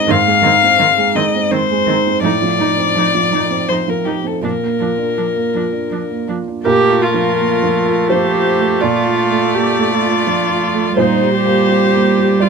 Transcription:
0.00 0.12 G#3 medium
0.00 0.19 C4 medium
0.00 0.12 D#4 medium
0.00 0.11 D#5 loud
0.07 2.19 G#2 medium
0.07 0.15 D#3 medium
0.07 0.18 C4 medium
0.07 1.17 F5 loud
0.27 0.56 G#3 medium
0.42 0.50 D#3 medium
0.42 0.53 C4 medium
0.42 0.73 D#4 medium
0.63 1.20 C4 soft
0.79 0.87 D#3 medium
0.79 0.89 C4 medium
0.98 1.27 G#3 soft
1.15 1.23 D#3 medium
1.15 1.23 C4 medium
1.15 1.45 D#4 medium
1.15 1.53 D#5 medium
1.35 1.92 C4 medium
1.51 1.59 D#3 medium
1.51 1.61 C4 medium
1.51 2.22 C5 loud
1.71 1.99 G#3 medium
1.86 1.94 D#3 medium
1.86 1.97 C4 medium
1.86 2.16 D#4 medium
2.07 2.24 C4 soft
2.21 4.39 A2 medium
2.21 2.29 F3 medium
2.21 2.32 D#4 medium
2.21 3.70 D5 loud
2.42 2.71 F3 soft
2.58 2.66 F3 medium
2.58 2.68 D#4 soft
2.58 2.89 D#4 medium
2.77 3.36 C4 soft
2.95 3.03 F3 medium
2.95 3.06 D#4 medium
3.15 3.44 F3 soft
3.31 3.39 F3 medium
3.31 3.62 D#4 soft
3.31 3.42 D#4 medium
3.50 4.10 C4 soft
3.68 3.76 F3 soft
3.68 3.79 D#4 medium
3.68 3.91 C5 medium
3.88 4.18 F3 soft
3.88 4.07 A#4 medium
4.05 4.13 F3 soft
4.05 4.36 D#4 soft
4.05 4.15 D#4 soft
4.05 4.28 G4 medium
4.24 4.43 C4 soft
4.24 4.44 A4 medium
4.42 6.60 A#2 medium
4.42 4.50 F3 medium
4.42 4.52 D4 medium
4.42 6.25 A#4 medium
4.63 4.92 A#3 soft
4.79 4.87 F3 soft
4.79 4.89 D4 soft
4.79 5.11 F4 soft
4.98 5.58 D4 soft
5.17 5.25 F3 soft
5.17 5.25 D4 soft
5.36 5.66 A#3 soft
5.54 5.62 F3 soft
5.54 5.64 D4 soft
5.54 5.84 F4 soft
5.73 6.31 D4 soft
5.91 5.99 F3 soft
5.91 6.00 D4 soft
6.11 6.39 A#3 soft
6.27 6.35 F3 soft
6.27 6.37 D4 soft
6.27 6.57 F4 soft
6.48 6.65 D4 soft
6.64 8.78 A#2 medium
6.64 10.94 A3 medium
6.64 7.03 G4 loud
6.64 8.12 A#4 loud
6.64 8.05 A#4 medium
6.90 7.28 F4 medium
7.01 8.09 F4 medium
7.14 7.52 F3 medium
7.39 7.62 A#3 medium
7.63 8.00 F3 medium
7.86 8.24 F4 medium
8.08 8.83 G4 medium
8.08 8.77 C5 medium
8.08 8.82 C5 medium
8.12 8.49 F3 medium
8.35 8.72 F4 medium
8.59 8.96 A3 medium
8.81 10.95 A#2 medium
8.81 9.56 F4 medium
8.81 10.96 D5 medium
8.81 10.93 D5 medium
9.06 9.44 F4 medium
9.30 9.68 A3 medium
9.54 9.78 A#3 medium
9.54 9.93 G4 medium
9.78 10.16 A3 medium
9.91 11.00 F4 medium
10.02 10.40 F4 medium
10.27 10.65 F3 medium
10.50 10.88 F4 medium
10.74 10.98 A3 medium
10.96 12.49 A#2 medium
10.96 12.49 G3 medium
10.96 11.34 D#4 medium
10.96 12.36 C5 loud
10.96 12.43 C5 loud
11.21 11.59 G4 medium
11.35 12.43 G4 medium
11.46 11.84 A#3 medium
11.69 11.93 C4 soft
11.93 12.31 A#3 medium
12.18 12.49 G4 medium
12.40 12.49 G3 medium
12.40 12.49 F4 medium
12.40 12.49 D5 medium

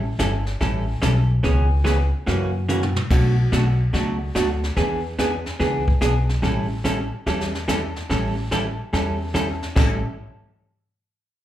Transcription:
0.00 0.11 A1 medium
0.19 0.54 G1 medium
0.19 0.31 E3 medium
0.19 0.31 G3 medium
0.19 0.31 C#4 medium
0.19 0.31 E4 medium
0.19 0.31 A4 medium
0.19 kick soft
0.19 snare medium
0.19 hi-hat pedal medium
0.46 snare soft
0.61 0.96 A1 medium
0.61 0.83 E3 medium
0.61 0.83 G3 medium
0.61 0.83 C#4 medium
0.61 0.83 E4 medium
0.61 0.84 A4 medium
0.61 brush sweep soft
0.61 kick soft
0.61 snare soft
1.01 1.37 B1 medium
1.01 1.14 E3 medium
1.01 1.14 G3 medium
1.01 1.14 C#4 medium
1.01 1.14 E4 medium
1.01 1.14 A4 medium
1.01 kick soft
1.01 snare medium
1.01 hi-hat pedal medium
1.43 2.11 C#2 medium
1.43 1.66 C#3 medium
1.43 1.66 E3 medium
1.43 1.66 B3 medium
1.43 1.67 C#4 medium
1.43 1.67 G#4 medium
1.43 brush sweep soft
1.43 kick soft
1.43 snare soft
1.84 1.97 C#3 medium
1.84 1.97 E3 medium
1.84 1.97 B3 medium
1.84 1.97 C#4 medium
1.84 1.97 G#4 medium
1.84 kick soft
1.84 snare medium
1.84 hi-hat pedal medium
2.26 2.94 F#2 medium
2.26 2.49 C#3 medium
2.26 2.50 E3 medium
2.26 2.50 A#3 medium
2.26 2.50 C#4 medium
2.26 2.50 F#4 medium
2.26 brush sweep soft
2.26 kick soft
2.26 snare soft
2.68 2.81 C#3 medium
2.68 2.81 E3 medium
2.68 2.81 A#3 medium
2.68 2.81 C#4 medium
2.68 2.81 F#4 medium
2.68 hi-hat pedal medium
2.83 mid tom medium
2.96 mid tom medium
3.10 3.44 B1 medium
3.10 3.33 B2 soft
3.10 3.33 F#3 medium
3.10 3.33 A3 medium
3.10 3.34 D4 medium
3.10 3.34 F#4 medium
3.10 brush sweep soft
3.10 kick medium
3.10 snare soft
3.10 crash medium
3.52 3.87 B1 medium
3.52 3.64 B2 medium
3.52 3.64 F#3 medium
3.52 3.64 A3 medium
3.52 3.64 D4 medium
3.52 3.64 F#4 medium
3.52 kick soft
3.52 snare medium
3.52 hi-hat pedal soft
3.93 4.29 C#2 medium
3.93 4.16 B2 medium
3.93 4.16 F#3 medium
3.93 4.16 A3 medium
3.93 4.16 D4 medium
3.93 4.16 F#4 medium
3.93 brush sweep soft
3.93 kick soft
3.93 snare soft
4.35 4.71 D2 medium
4.35 4.47 B2 medium
4.35 4.47 F#3 medium
4.35 4.47 A3 medium
4.35 4.47 D4 medium
4.35 4.47 F#4 medium
4.35 kick soft
4.35 snare medium
4.35 hi-hat pedal medium
4.64 snare soft
4.77 5.43 E2 medium
4.77 4.99 E3 medium
4.77 4.99 B3 medium
4.77 4.99 D4 medium
4.77 5.00 G#4 medium
4.77 brush sweep soft
4.77 kick soft
4.77 snare soft
5.18 5.30 E3 medium
5.18 5.30 B3 medium
5.18 5.31 D4 medium
5.18 5.31 G#4 medium
5.18 kick soft
5.18 snare medium
5.18 hi-hat pedal medium
5.46 snare soft
5.60 5.95 C#2 medium
5.60 5.82 E3 medium
5.60 5.82 B3 medium
5.60 5.83 D4 medium
5.60 5.83 G#4 medium
5.60 brush sweep soft
5.60 kick soft
5.60 snare soft
5.88 kick medium
6.01 6.37 B1 medium
6.01 6.13 E3 medium
6.01 6.13 B3 medium
6.01 6.14 D4 medium
6.01 6.13 G#4 medium
6.01 kick soft
6.01 snare medium
6.01 hi-hat pedal medium
6.29 snare soft
6.42 7.10 A1 medium
6.42 6.65 E3 medium
6.42 6.66 G3 medium
6.42 6.66 C#4 medium
6.42 6.66 E4 medium
6.42 6.66 A4 medium
6.42 brush sweep soft
6.42 kick soft
6.42 snare soft
6.84 6.96 E3 medium
6.84 6.97 G3 medium
6.84 6.97 C#4 medium
6.84 6.97 E4 medium
6.84 6.97 A4 medium
6.84 kick soft
6.84 snare medium
6.84 hi-hat pedal medium
7.26 7.93 E2 medium
7.26 7.49 E3 medium
7.26 7.49 G3 medium
7.26 7.49 C#4 medium
7.26 7.49 E4 medium
7.26 7.49 A4 medium
7.26 brush sweep medium
7.26 kick soft
7.26 snare soft
7.40 snare soft
7.55 snare soft
7.68 7.80 E3 medium
7.68 7.80 G3 medium
7.68 7.80 C#4 medium
7.68 7.80 E4 medium
7.68 7.80 A4 medium
7.68 kick soft
7.68 snare medium
7.68 hi-hat pedal medium
7.96 snare soft
8.10 8.77 A1 medium
8.10 8.32 E3 medium
8.10 8.32 G3 medium
8.10 8.33 C#4 medium
8.10 8.33 E4 medium
8.10 8.33 A4 medium
8.10 brush sweep soft
8.10 kick soft
8.10 snare soft
8.51 8.63 E3 medium
8.51 8.64 G3 medium
8.51 8.63 C#4 medium
8.51 8.64 E4 medium
8.51 8.64 A4 medium
8.51 kick soft
8.51 snare medium
8.51 hi-hat pedal medium
8.93 9.60 E2 medium
8.93 9.15 E3 medium
8.93 9.16 G3 medium
8.93 9.16 C#4 medium
8.93 9.16 E4 medium
8.93 9.16 A4 medium
8.93 brush sweep soft
8.93 kick soft
8.93 snare soft
9.34 9.46 E3 medium
9.34 9.46 G3 medium
9.34 9.46 C#4 medium
9.34 9.47 E4 medium
9.34 9.47 A4 medium
9.34 kick soft
9.34 snare medium
9.34 hi-hat pedal medium
9.62 snare soft
9.76 10.02 A1 medium
9.76 9.98 A2 medium
9.76 9.98 E3 medium
9.76 9.98 G3 medium
9.76 9.98 C#4 medium
9.76 9.98 E4 medium
9.76 9.99 A4 medium
9.76 kick medium
9.76 snare medium
9.76 crash medium

